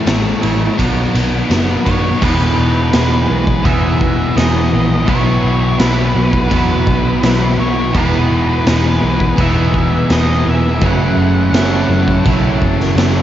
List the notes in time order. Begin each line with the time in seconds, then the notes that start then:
Already playing: A2 E3 A3 C#4 E4 C#5 A5 C#6
0.06 A1 A2 E3 A3, snare, ride
0.42 A1 A2 E3 A3 C#4 E4, ride
0.77 B1 B2 D#3 F#3 B3 D#4 B4 F#5 B5, kick, ride
0.82 B3 D#4
1.14 B1 B2 F#3 B3, ride
1.50 F#1 B2 F#3 B3, snare, ride
1.85 F#2 B2 D#3 F#3 B3 D#4 C#5, kick, ride
2.21 E1 E2 B2 E3 G#3 B3 D#4 B4 G#5 B5, kick, crash
2.58 E1
2.91 E1 E2 B2 E3 G#3 B3 D#4, snare, crash
3.28 B1 B2 E3
3.47 kick
3.63 E1 E2 B2 E3 G#3 B3 D#4 E5, kick, crash
4.01 kick
4.34 E1 E2 B2 E3 G#3 B3 D#4 D#5, snare, crash
4.71 A#1 B2 E3
5.05 B1 B2 E3 F#3 B3 E4, kick, crash
5.09 B4 C#5 F#5
5.44 B1
5.77 B1 B2 E3 F#3 B3 E4 B4, snare, crash
6.13 B1 F#3 B3
6.33 kick
6.50 E2 B2 E3 F#3 B3 E4, kick, crash
6.87 B1, kick
7.21 B1 B2 E3 F#3 B3 E4, snare, crash
7.26 B3
7.58 B1 F#3 B3 C#5
7.92 E1 E2 B2 E3 G#3 B3 D#4 B4 G#5, kick, crash
7.96 B2 E3
8.30 E1
8.65 E1 E2 B2 E3 G#3 B3 D#4, snare, crash
8.69 E3
9.02 B1 B2 E3
9.20 kick
9.36 E1 E2 B2 E3 G#3 B3 D#4, kick, crash
9.40 E5
9.74 kick
10.10 E1 E2 B2 E3 G#3 B3 D#4 D#5, snare, crash
10.46 E1 B2 E3 E5
10.81 F#1 F#2 C#3 E3 F#3 C#5 F#5 A5, kick, crash
10.85 C#3 F#3 A3 E4 F#5
11.17 F#1
11.52 F#1 F#2 C#3 E3 A3, snare, crash
11.56 F#3 E4
11.89 F#1 C#3 F#3
12.08 kick
12.26 B1 F#2 C#3 E3 F#3 A3 E4, kick, crash
12.62 F#1, kick
12.80 snare
12.96 F#1 F#2 C#3 E3 F#3 A3 E4, snare, crash